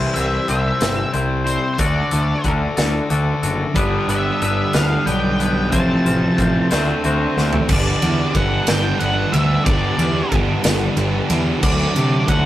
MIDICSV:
0, 0, Header, 1, 7, 480
1, 0, Start_track
1, 0, Tempo, 654308
1, 1321, Time_signature, 6, 3, 24, 8
1, 9138, End_track
2, 0, Start_track
2, 0, Title_t, "Lead electric guitar"
2, 0, Program_c, 0, 29
2, 104, Note_on_c, 0, 76, 90
2, 354, Note_off_c, 0, 76, 0
2, 363, Note_on_c, 0, 76, 94
2, 813, Note_off_c, 0, 76, 0
2, 1076, Note_on_c, 0, 72, 84
2, 1267, Note_off_c, 0, 72, 0
2, 1276, Note_on_c, 0, 72, 80
2, 1315, Note_on_c, 0, 74, 100
2, 1324, Note_off_c, 0, 72, 0
2, 1830, Note_off_c, 0, 74, 0
2, 3011, Note_on_c, 0, 76, 76
2, 3237, Note_off_c, 0, 76, 0
2, 3245, Note_on_c, 0, 76, 75
2, 3483, Note_off_c, 0, 76, 0
2, 3486, Note_on_c, 0, 77, 89
2, 3714, Note_on_c, 0, 79, 101
2, 3732, Note_off_c, 0, 77, 0
2, 4191, Note_off_c, 0, 79, 0
2, 4193, Note_on_c, 0, 81, 96
2, 5370, Note_off_c, 0, 81, 0
2, 5670, Note_on_c, 0, 74, 93
2, 6138, Note_on_c, 0, 78, 99
2, 6151, Note_off_c, 0, 74, 0
2, 6376, Note_off_c, 0, 78, 0
2, 6379, Note_on_c, 0, 79, 114
2, 6595, Note_off_c, 0, 79, 0
2, 6598, Note_on_c, 0, 78, 99
2, 6839, Note_on_c, 0, 76, 91
2, 6848, Note_off_c, 0, 78, 0
2, 7077, Note_off_c, 0, 76, 0
2, 7080, Note_on_c, 0, 74, 83
2, 7592, Note_off_c, 0, 74, 0
2, 8537, Note_on_c, 0, 74, 94
2, 9015, Note_on_c, 0, 78, 96
2, 9023, Note_off_c, 0, 74, 0
2, 9138, Note_off_c, 0, 78, 0
2, 9138, End_track
3, 0, Start_track
3, 0, Title_t, "Clean electric guitar"
3, 0, Program_c, 1, 27
3, 0, Note_on_c, 1, 48, 81
3, 0, Note_on_c, 1, 52, 82
3, 0, Note_on_c, 1, 55, 84
3, 0, Note_on_c, 1, 60, 83
3, 0, Note_on_c, 1, 64, 89
3, 0, Note_on_c, 1, 72, 98
3, 110, Note_off_c, 1, 72, 0
3, 111, Note_off_c, 1, 64, 0
3, 113, Note_off_c, 1, 60, 0
3, 117, Note_off_c, 1, 55, 0
3, 119, Note_on_c, 1, 72, 72
3, 120, Note_on_c, 1, 64, 59
3, 122, Note_on_c, 1, 60, 62
3, 126, Note_on_c, 1, 55, 62
3, 340, Note_off_c, 1, 55, 0
3, 344, Note_off_c, 1, 60, 0
3, 349, Note_on_c, 1, 55, 66
3, 351, Note_off_c, 1, 64, 0
3, 352, Note_off_c, 1, 48, 0
3, 353, Note_on_c, 1, 60, 62
3, 354, Note_off_c, 1, 52, 0
3, 354, Note_off_c, 1, 72, 0
3, 360, Note_on_c, 1, 64, 73
3, 363, Note_on_c, 1, 72, 75
3, 572, Note_off_c, 1, 72, 0
3, 576, Note_off_c, 1, 60, 0
3, 579, Note_off_c, 1, 64, 0
3, 581, Note_on_c, 1, 72, 69
3, 582, Note_off_c, 1, 55, 0
3, 585, Note_on_c, 1, 60, 67
3, 588, Note_on_c, 1, 64, 68
3, 591, Note_on_c, 1, 55, 53
3, 815, Note_off_c, 1, 55, 0
3, 815, Note_off_c, 1, 60, 0
3, 820, Note_off_c, 1, 64, 0
3, 824, Note_off_c, 1, 72, 0
3, 824, Note_on_c, 1, 55, 65
3, 824, Note_on_c, 1, 60, 74
3, 829, Note_on_c, 1, 64, 73
3, 833, Note_on_c, 1, 72, 86
3, 1048, Note_off_c, 1, 72, 0
3, 1055, Note_off_c, 1, 64, 0
3, 1057, Note_on_c, 1, 72, 73
3, 1058, Note_off_c, 1, 60, 0
3, 1064, Note_on_c, 1, 64, 64
3, 1065, Note_off_c, 1, 55, 0
3, 1067, Note_on_c, 1, 60, 65
3, 1073, Note_on_c, 1, 55, 54
3, 1295, Note_off_c, 1, 72, 0
3, 1298, Note_off_c, 1, 64, 0
3, 1300, Note_off_c, 1, 60, 0
3, 1303, Note_off_c, 1, 55, 0
3, 1308, Note_on_c, 1, 50, 79
3, 1312, Note_on_c, 1, 62, 89
3, 1314, Note_on_c, 1, 66, 97
3, 1323, Note_on_c, 1, 69, 93
3, 1541, Note_off_c, 1, 69, 0
3, 1550, Note_on_c, 1, 69, 72
3, 1552, Note_off_c, 1, 66, 0
3, 1561, Note_off_c, 1, 62, 0
3, 1561, Note_on_c, 1, 66, 70
3, 1564, Note_on_c, 1, 62, 58
3, 1783, Note_off_c, 1, 50, 0
3, 1791, Note_off_c, 1, 66, 0
3, 1792, Note_on_c, 1, 50, 74
3, 1794, Note_off_c, 1, 69, 0
3, 1795, Note_off_c, 1, 62, 0
3, 1798, Note_on_c, 1, 62, 74
3, 1800, Note_on_c, 1, 66, 71
3, 1803, Note_on_c, 1, 69, 74
3, 2022, Note_off_c, 1, 69, 0
3, 2025, Note_off_c, 1, 66, 0
3, 2030, Note_on_c, 1, 69, 77
3, 2034, Note_on_c, 1, 66, 66
3, 2035, Note_off_c, 1, 62, 0
3, 2044, Note_on_c, 1, 62, 61
3, 2262, Note_off_c, 1, 50, 0
3, 2266, Note_off_c, 1, 66, 0
3, 2269, Note_off_c, 1, 62, 0
3, 2271, Note_on_c, 1, 50, 74
3, 2275, Note_off_c, 1, 69, 0
3, 2275, Note_on_c, 1, 66, 80
3, 2278, Note_on_c, 1, 62, 75
3, 2284, Note_on_c, 1, 69, 82
3, 2504, Note_off_c, 1, 69, 0
3, 2510, Note_off_c, 1, 66, 0
3, 2513, Note_on_c, 1, 69, 71
3, 2514, Note_off_c, 1, 62, 0
3, 2519, Note_on_c, 1, 66, 60
3, 2523, Note_on_c, 1, 62, 54
3, 2743, Note_off_c, 1, 50, 0
3, 2744, Note_off_c, 1, 69, 0
3, 2747, Note_off_c, 1, 66, 0
3, 2749, Note_off_c, 1, 62, 0
3, 2750, Note_on_c, 1, 55, 86
3, 2756, Note_on_c, 1, 62, 89
3, 2758, Note_on_c, 1, 59, 97
3, 2766, Note_on_c, 1, 71, 91
3, 2994, Note_off_c, 1, 71, 0
3, 2999, Note_off_c, 1, 59, 0
3, 3003, Note_on_c, 1, 71, 76
3, 3004, Note_off_c, 1, 62, 0
3, 3007, Note_on_c, 1, 59, 72
3, 3012, Note_on_c, 1, 62, 59
3, 3235, Note_off_c, 1, 55, 0
3, 3236, Note_off_c, 1, 62, 0
3, 3244, Note_on_c, 1, 55, 70
3, 3245, Note_on_c, 1, 62, 73
3, 3246, Note_off_c, 1, 71, 0
3, 3247, Note_off_c, 1, 59, 0
3, 3255, Note_on_c, 1, 71, 76
3, 3256, Note_on_c, 1, 59, 69
3, 3467, Note_off_c, 1, 71, 0
3, 3473, Note_off_c, 1, 59, 0
3, 3476, Note_on_c, 1, 71, 74
3, 3480, Note_off_c, 1, 62, 0
3, 3482, Note_on_c, 1, 59, 73
3, 3488, Note_on_c, 1, 62, 63
3, 3699, Note_off_c, 1, 55, 0
3, 3705, Note_off_c, 1, 59, 0
3, 3706, Note_off_c, 1, 62, 0
3, 3708, Note_on_c, 1, 55, 81
3, 3712, Note_off_c, 1, 71, 0
3, 3714, Note_on_c, 1, 59, 86
3, 3714, Note_on_c, 1, 62, 84
3, 3721, Note_on_c, 1, 71, 84
3, 3947, Note_off_c, 1, 71, 0
3, 3952, Note_off_c, 1, 59, 0
3, 3955, Note_on_c, 1, 71, 73
3, 3957, Note_off_c, 1, 62, 0
3, 3960, Note_on_c, 1, 59, 70
3, 3965, Note_on_c, 1, 62, 55
3, 4182, Note_off_c, 1, 55, 0
3, 4185, Note_off_c, 1, 71, 0
3, 4188, Note_off_c, 1, 59, 0
3, 4191, Note_off_c, 1, 62, 0
3, 4193, Note_on_c, 1, 45, 86
3, 4197, Note_on_c, 1, 57, 87
3, 4201, Note_on_c, 1, 65, 93
3, 4203, Note_on_c, 1, 60, 95
3, 4207, Note_on_c, 1, 72, 89
3, 4428, Note_off_c, 1, 72, 0
3, 4436, Note_off_c, 1, 65, 0
3, 4437, Note_on_c, 1, 72, 77
3, 4439, Note_off_c, 1, 60, 0
3, 4444, Note_on_c, 1, 65, 72
3, 4448, Note_on_c, 1, 60, 63
3, 4659, Note_off_c, 1, 57, 0
3, 4661, Note_off_c, 1, 60, 0
3, 4668, Note_on_c, 1, 57, 72
3, 4670, Note_off_c, 1, 65, 0
3, 4670, Note_on_c, 1, 60, 74
3, 4677, Note_off_c, 1, 72, 0
3, 4679, Note_off_c, 1, 45, 0
3, 4679, Note_on_c, 1, 65, 74
3, 4686, Note_on_c, 1, 72, 79
3, 4902, Note_off_c, 1, 57, 0
3, 4903, Note_off_c, 1, 60, 0
3, 4907, Note_off_c, 1, 65, 0
3, 4911, Note_off_c, 1, 72, 0
3, 4924, Note_on_c, 1, 72, 100
3, 4926, Note_on_c, 1, 66, 84
3, 4932, Note_on_c, 1, 57, 82
3, 4934, Note_on_c, 1, 60, 77
3, 4941, Note_on_c, 1, 50, 80
3, 5151, Note_off_c, 1, 57, 0
3, 5156, Note_off_c, 1, 60, 0
3, 5160, Note_on_c, 1, 57, 72
3, 5163, Note_off_c, 1, 72, 0
3, 5164, Note_off_c, 1, 66, 0
3, 5165, Note_on_c, 1, 60, 79
3, 5172, Note_on_c, 1, 66, 83
3, 5172, Note_on_c, 1, 72, 93
3, 5387, Note_off_c, 1, 72, 0
3, 5395, Note_on_c, 1, 72, 66
3, 5396, Note_off_c, 1, 66, 0
3, 5398, Note_off_c, 1, 60, 0
3, 5405, Note_on_c, 1, 66, 66
3, 5407, Note_on_c, 1, 60, 58
3, 5413, Note_off_c, 1, 50, 0
3, 5626, Note_off_c, 1, 72, 0
3, 5628, Note_off_c, 1, 57, 0
3, 5630, Note_off_c, 1, 66, 0
3, 5631, Note_off_c, 1, 60, 0
3, 9138, End_track
4, 0, Start_track
4, 0, Title_t, "Distorted electric guitar"
4, 0, Program_c, 2, 30
4, 0, Note_on_c, 2, 48, 89
4, 0, Note_on_c, 2, 55, 95
4, 0, Note_on_c, 2, 60, 98
4, 1304, Note_off_c, 2, 48, 0
4, 1308, Note_off_c, 2, 55, 0
4, 1310, Note_on_c, 2, 50, 89
4, 1313, Note_off_c, 2, 60, 0
4, 1320, Note_on_c, 2, 57, 85
4, 1332, Note_on_c, 2, 62, 98
4, 2744, Note_off_c, 2, 50, 0
4, 2749, Note_off_c, 2, 57, 0
4, 2752, Note_on_c, 2, 43, 90
4, 2754, Note_off_c, 2, 62, 0
4, 2763, Note_on_c, 2, 50, 92
4, 2776, Note_on_c, 2, 55, 105
4, 4184, Note_off_c, 2, 43, 0
4, 4190, Note_off_c, 2, 50, 0
4, 4195, Note_on_c, 2, 41, 98
4, 4196, Note_off_c, 2, 55, 0
4, 4205, Note_on_c, 2, 48, 93
4, 4217, Note_on_c, 2, 53, 96
4, 4905, Note_off_c, 2, 41, 0
4, 4910, Note_off_c, 2, 48, 0
4, 4916, Note_off_c, 2, 53, 0
4, 4923, Note_on_c, 2, 50, 94
4, 4932, Note_on_c, 2, 57, 90
4, 4938, Note_on_c, 2, 62, 97
4, 5629, Note_off_c, 2, 50, 0
4, 5634, Note_off_c, 2, 57, 0
4, 5637, Note_off_c, 2, 62, 0
4, 5638, Note_on_c, 2, 43, 97
4, 5644, Note_on_c, 2, 50, 102
4, 5651, Note_on_c, 2, 55, 99
4, 5657, Note_on_c, 2, 62, 101
4, 5658, Note_on_c, 2, 59, 100
4, 5872, Note_off_c, 2, 62, 0
4, 5875, Note_on_c, 2, 62, 68
4, 5882, Note_off_c, 2, 59, 0
4, 5885, Note_on_c, 2, 59, 68
4, 5886, Note_off_c, 2, 55, 0
4, 5889, Note_on_c, 2, 55, 63
4, 6118, Note_off_c, 2, 50, 0
4, 6127, Note_on_c, 2, 50, 78
4, 6130, Note_off_c, 2, 55, 0
4, 6133, Note_on_c, 2, 55, 75
4, 6135, Note_off_c, 2, 59, 0
4, 6137, Note_off_c, 2, 62, 0
4, 6138, Note_on_c, 2, 59, 72
4, 6140, Note_on_c, 2, 62, 78
4, 6360, Note_off_c, 2, 62, 0
4, 6363, Note_on_c, 2, 62, 76
4, 6365, Note_off_c, 2, 59, 0
4, 6369, Note_off_c, 2, 55, 0
4, 6374, Note_on_c, 2, 59, 72
4, 6378, Note_on_c, 2, 55, 59
4, 6598, Note_off_c, 2, 50, 0
4, 6603, Note_off_c, 2, 55, 0
4, 6607, Note_on_c, 2, 50, 80
4, 6612, Note_on_c, 2, 55, 74
4, 6613, Note_off_c, 2, 59, 0
4, 6622, Note_on_c, 2, 59, 80
4, 6624, Note_off_c, 2, 62, 0
4, 6627, Note_on_c, 2, 62, 91
4, 6840, Note_off_c, 2, 62, 0
4, 6843, Note_off_c, 2, 59, 0
4, 6843, Note_on_c, 2, 62, 82
4, 6849, Note_off_c, 2, 55, 0
4, 6852, Note_on_c, 2, 59, 72
4, 6858, Note_on_c, 2, 55, 64
4, 7074, Note_off_c, 2, 43, 0
4, 7074, Note_off_c, 2, 50, 0
4, 7077, Note_on_c, 2, 43, 96
4, 7080, Note_off_c, 2, 55, 0
4, 7081, Note_off_c, 2, 59, 0
4, 7083, Note_on_c, 2, 50, 90
4, 7089, Note_on_c, 2, 55, 101
4, 7090, Note_on_c, 2, 59, 94
4, 7094, Note_off_c, 2, 62, 0
4, 7097, Note_on_c, 2, 62, 106
4, 7322, Note_off_c, 2, 59, 0
4, 7322, Note_off_c, 2, 62, 0
4, 7325, Note_on_c, 2, 62, 75
4, 7331, Note_on_c, 2, 59, 68
4, 7335, Note_off_c, 2, 55, 0
4, 7344, Note_on_c, 2, 55, 63
4, 7555, Note_off_c, 2, 50, 0
4, 7560, Note_off_c, 2, 43, 0
4, 7561, Note_off_c, 2, 55, 0
4, 7564, Note_off_c, 2, 59, 0
4, 7564, Note_on_c, 2, 50, 77
4, 7570, Note_on_c, 2, 55, 81
4, 7573, Note_on_c, 2, 59, 80
4, 7575, Note_off_c, 2, 62, 0
4, 7578, Note_on_c, 2, 62, 84
4, 7796, Note_off_c, 2, 62, 0
4, 7799, Note_off_c, 2, 59, 0
4, 7799, Note_on_c, 2, 62, 81
4, 7808, Note_on_c, 2, 59, 72
4, 7813, Note_off_c, 2, 55, 0
4, 7822, Note_on_c, 2, 55, 66
4, 8024, Note_off_c, 2, 50, 0
4, 8033, Note_on_c, 2, 50, 76
4, 8035, Note_off_c, 2, 55, 0
4, 8036, Note_off_c, 2, 59, 0
4, 8044, Note_on_c, 2, 55, 80
4, 8045, Note_on_c, 2, 59, 87
4, 8051, Note_off_c, 2, 62, 0
4, 8054, Note_on_c, 2, 62, 83
4, 8276, Note_off_c, 2, 62, 0
4, 8279, Note_on_c, 2, 62, 83
4, 8282, Note_off_c, 2, 59, 0
4, 8289, Note_off_c, 2, 55, 0
4, 8291, Note_on_c, 2, 59, 69
4, 8298, Note_on_c, 2, 55, 63
4, 8503, Note_off_c, 2, 50, 0
4, 8512, Note_off_c, 2, 59, 0
4, 8515, Note_off_c, 2, 55, 0
4, 8523, Note_on_c, 2, 50, 91
4, 8531, Note_on_c, 2, 54, 108
4, 8536, Note_on_c, 2, 57, 102
4, 8537, Note_off_c, 2, 62, 0
4, 8540, Note_on_c, 2, 62, 99
4, 8759, Note_off_c, 2, 62, 0
4, 8762, Note_on_c, 2, 62, 77
4, 8770, Note_off_c, 2, 57, 0
4, 8773, Note_on_c, 2, 57, 68
4, 8780, Note_off_c, 2, 54, 0
4, 8783, Note_on_c, 2, 54, 63
4, 9000, Note_off_c, 2, 50, 0
4, 9003, Note_on_c, 2, 50, 76
4, 9005, Note_off_c, 2, 54, 0
4, 9008, Note_on_c, 2, 54, 79
4, 9015, Note_off_c, 2, 57, 0
4, 9018, Note_on_c, 2, 57, 78
4, 9020, Note_off_c, 2, 62, 0
4, 9023, Note_on_c, 2, 62, 90
4, 9138, Note_off_c, 2, 50, 0
4, 9138, Note_off_c, 2, 54, 0
4, 9138, Note_off_c, 2, 57, 0
4, 9138, Note_off_c, 2, 62, 0
4, 9138, End_track
5, 0, Start_track
5, 0, Title_t, "Distorted electric guitar"
5, 0, Program_c, 3, 30
5, 3475, Note_on_c, 3, 55, 89
5, 3496, Note_on_c, 3, 50, 88
5, 3504, Note_on_c, 3, 43, 76
5, 4186, Note_off_c, 3, 55, 0
5, 4189, Note_off_c, 3, 43, 0
5, 4196, Note_off_c, 3, 50, 0
5, 6371, Note_on_c, 3, 50, 83
5, 6378, Note_on_c, 3, 43, 86
5, 7063, Note_off_c, 3, 43, 0
5, 7071, Note_off_c, 3, 50, 0
5, 7819, Note_on_c, 3, 50, 88
5, 7820, Note_on_c, 3, 43, 82
5, 8499, Note_off_c, 3, 50, 0
5, 8516, Note_off_c, 3, 43, 0
5, 9138, End_track
6, 0, Start_track
6, 0, Title_t, "Picked electric bass"
6, 0, Program_c, 4, 34
6, 118, Note_on_c, 4, 36, 83
6, 272, Note_off_c, 4, 36, 0
6, 357, Note_on_c, 4, 36, 79
6, 511, Note_off_c, 4, 36, 0
6, 598, Note_on_c, 4, 31, 94
6, 752, Note_off_c, 4, 31, 0
6, 838, Note_on_c, 4, 36, 82
6, 1145, Note_off_c, 4, 36, 0
6, 1312, Note_on_c, 4, 38, 91
6, 1468, Note_off_c, 4, 38, 0
6, 1558, Note_on_c, 4, 38, 88
6, 1712, Note_off_c, 4, 38, 0
6, 1796, Note_on_c, 4, 38, 83
6, 1951, Note_off_c, 4, 38, 0
6, 2036, Note_on_c, 4, 38, 88
6, 2191, Note_off_c, 4, 38, 0
6, 2278, Note_on_c, 4, 38, 90
6, 2432, Note_off_c, 4, 38, 0
6, 2517, Note_on_c, 4, 30, 89
6, 2672, Note_off_c, 4, 30, 0
6, 2757, Note_on_c, 4, 31, 90
6, 2912, Note_off_c, 4, 31, 0
6, 2991, Note_on_c, 4, 31, 87
6, 3148, Note_off_c, 4, 31, 0
6, 3243, Note_on_c, 4, 31, 86
6, 3396, Note_off_c, 4, 31, 0
6, 3479, Note_on_c, 4, 38, 89
6, 3634, Note_off_c, 4, 38, 0
6, 3717, Note_on_c, 4, 35, 88
6, 4200, Note_off_c, 4, 35, 0
6, 4200, Note_on_c, 4, 33, 97
6, 4354, Note_off_c, 4, 33, 0
6, 4440, Note_on_c, 4, 33, 86
6, 4594, Note_off_c, 4, 33, 0
6, 4683, Note_on_c, 4, 33, 86
6, 4836, Note_off_c, 4, 33, 0
6, 4931, Note_on_c, 4, 38, 97
6, 5082, Note_off_c, 4, 38, 0
6, 5167, Note_on_c, 4, 38, 91
6, 5319, Note_off_c, 4, 38, 0
6, 5408, Note_on_c, 4, 38, 97
6, 5560, Note_off_c, 4, 38, 0
6, 5642, Note_on_c, 4, 31, 105
6, 5811, Note_off_c, 4, 31, 0
6, 5883, Note_on_c, 4, 40, 89
6, 6052, Note_off_c, 4, 40, 0
6, 6124, Note_on_c, 4, 31, 86
6, 6293, Note_off_c, 4, 31, 0
6, 6369, Note_on_c, 4, 31, 93
6, 6536, Note_off_c, 4, 31, 0
6, 6612, Note_on_c, 4, 31, 92
6, 6778, Note_off_c, 4, 31, 0
6, 6844, Note_on_c, 4, 38, 97
6, 7013, Note_off_c, 4, 38, 0
6, 7093, Note_on_c, 4, 31, 97
6, 7258, Note_off_c, 4, 31, 0
6, 7322, Note_on_c, 4, 40, 90
6, 7491, Note_off_c, 4, 40, 0
6, 7575, Note_on_c, 4, 31, 91
6, 7739, Note_off_c, 4, 31, 0
6, 7810, Note_on_c, 4, 31, 97
6, 7976, Note_off_c, 4, 31, 0
6, 8045, Note_on_c, 4, 31, 92
6, 8213, Note_off_c, 4, 31, 0
6, 8289, Note_on_c, 4, 40, 93
6, 8455, Note_off_c, 4, 40, 0
6, 8528, Note_on_c, 4, 38, 102
6, 8694, Note_off_c, 4, 38, 0
6, 8773, Note_on_c, 4, 48, 88
6, 8938, Note_off_c, 4, 48, 0
6, 9009, Note_on_c, 4, 38, 93
6, 9138, Note_off_c, 4, 38, 0
6, 9138, End_track
7, 0, Start_track
7, 0, Title_t, "Drums"
7, 115, Note_on_c, 9, 42, 62
7, 188, Note_off_c, 9, 42, 0
7, 354, Note_on_c, 9, 42, 74
7, 427, Note_off_c, 9, 42, 0
7, 592, Note_on_c, 9, 42, 92
7, 601, Note_on_c, 9, 38, 112
7, 665, Note_off_c, 9, 42, 0
7, 674, Note_off_c, 9, 38, 0
7, 834, Note_on_c, 9, 42, 73
7, 907, Note_off_c, 9, 42, 0
7, 1076, Note_on_c, 9, 42, 72
7, 1150, Note_off_c, 9, 42, 0
7, 1310, Note_on_c, 9, 42, 98
7, 1314, Note_on_c, 9, 36, 105
7, 1383, Note_off_c, 9, 42, 0
7, 1388, Note_off_c, 9, 36, 0
7, 1550, Note_on_c, 9, 42, 70
7, 1624, Note_off_c, 9, 42, 0
7, 1790, Note_on_c, 9, 42, 72
7, 1794, Note_on_c, 9, 36, 79
7, 1863, Note_off_c, 9, 42, 0
7, 1867, Note_off_c, 9, 36, 0
7, 2033, Note_on_c, 9, 42, 95
7, 2042, Note_on_c, 9, 38, 107
7, 2107, Note_off_c, 9, 42, 0
7, 2115, Note_off_c, 9, 38, 0
7, 2276, Note_on_c, 9, 42, 69
7, 2349, Note_off_c, 9, 42, 0
7, 2517, Note_on_c, 9, 42, 69
7, 2591, Note_off_c, 9, 42, 0
7, 2755, Note_on_c, 9, 42, 93
7, 2758, Note_on_c, 9, 36, 105
7, 2828, Note_off_c, 9, 42, 0
7, 2831, Note_off_c, 9, 36, 0
7, 3000, Note_on_c, 9, 42, 63
7, 3073, Note_off_c, 9, 42, 0
7, 3241, Note_on_c, 9, 42, 67
7, 3314, Note_off_c, 9, 42, 0
7, 3472, Note_on_c, 9, 42, 90
7, 3481, Note_on_c, 9, 38, 112
7, 3545, Note_off_c, 9, 42, 0
7, 3554, Note_off_c, 9, 38, 0
7, 3720, Note_on_c, 9, 42, 65
7, 3794, Note_off_c, 9, 42, 0
7, 3962, Note_on_c, 9, 42, 71
7, 4036, Note_off_c, 9, 42, 0
7, 4199, Note_on_c, 9, 42, 95
7, 4201, Note_on_c, 9, 36, 112
7, 4272, Note_off_c, 9, 42, 0
7, 4274, Note_off_c, 9, 36, 0
7, 4446, Note_on_c, 9, 42, 68
7, 4520, Note_off_c, 9, 42, 0
7, 4683, Note_on_c, 9, 36, 85
7, 4687, Note_on_c, 9, 42, 73
7, 4756, Note_off_c, 9, 36, 0
7, 4760, Note_off_c, 9, 42, 0
7, 4921, Note_on_c, 9, 42, 96
7, 4930, Note_on_c, 9, 38, 117
7, 4994, Note_off_c, 9, 42, 0
7, 5003, Note_off_c, 9, 38, 0
7, 5165, Note_on_c, 9, 42, 76
7, 5238, Note_off_c, 9, 42, 0
7, 5412, Note_on_c, 9, 38, 63
7, 5485, Note_off_c, 9, 38, 0
7, 5522, Note_on_c, 9, 43, 91
7, 5595, Note_off_c, 9, 43, 0
7, 5639, Note_on_c, 9, 49, 120
7, 5643, Note_on_c, 9, 36, 114
7, 5713, Note_off_c, 9, 49, 0
7, 5716, Note_off_c, 9, 36, 0
7, 5884, Note_on_c, 9, 51, 74
7, 5957, Note_off_c, 9, 51, 0
7, 6124, Note_on_c, 9, 36, 86
7, 6124, Note_on_c, 9, 51, 78
7, 6197, Note_off_c, 9, 51, 0
7, 6198, Note_off_c, 9, 36, 0
7, 6359, Note_on_c, 9, 51, 105
7, 6368, Note_on_c, 9, 38, 119
7, 6433, Note_off_c, 9, 51, 0
7, 6441, Note_off_c, 9, 38, 0
7, 6605, Note_on_c, 9, 51, 77
7, 6679, Note_off_c, 9, 51, 0
7, 6849, Note_on_c, 9, 51, 78
7, 6922, Note_off_c, 9, 51, 0
7, 7089, Note_on_c, 9, 36, 119
7, 7089, Note_on_c, 9, 51, 96
7, 7162, Note_off_c, 9, 36, 0
7, 7163, Note_off_c, 9, 51, 0
7, 7329, Note_on_c, 9, 51, 75
7, 7402, Note_off_c, 9, 51, 0
7, 7569, Note_on_c, 9, 51, 81
7, 7570, Note_on_c, 9, 36, 87
7, 7642, Note_off_c, 9, 51, 0
7, 7644, Note_off_c, 9, 36, 0
7, 7804, Note_on_c, 9, 51, 105
7, 7813, Note_on_c, 9, 38, 118
7, 7878, Note_off_c, 9, 51, 0
7, 7887, Note_off_c, 9, 38, 0
7, 8046, Note_on_c, 9, 51, 78
7, 8119, Note_off_c, 9, 51, 0
7, 8288, Note_on_c, 9, 51, 88
7, 8361, Note_off_c, 9, 51, 0
7, 8530, Note_on_c, 9, 57, 109
7, 8531, Note_on_c, 9, 36, 114
7, 8603, Note_off_c, 9, 57, 0
7, 8605, Note_off_c, 9, 36, 0
7, 8773, Note_on_c, 9, 51, 83
7, 8846, Note_off_c, 9, 51, 0
7, 9010, Note_on_c, 9, 36, 83
7, 9010, Note_on_c, 9, 51, 85
7, 9083, Note_off_c, 9, 36, 0
7, 9084, Note_off_c, 9, 51, 0
7, 9138, End_track
0, 0, End_of_file